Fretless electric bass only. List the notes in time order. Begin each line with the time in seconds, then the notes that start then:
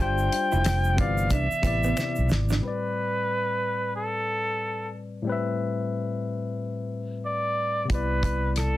0.00 G1
0.53 F1
0.99 G1
1.31 C2
1.52 muted fretless electric bass stroke
1.64 A1
2.18 B1
2.31 G#1
7.91 C2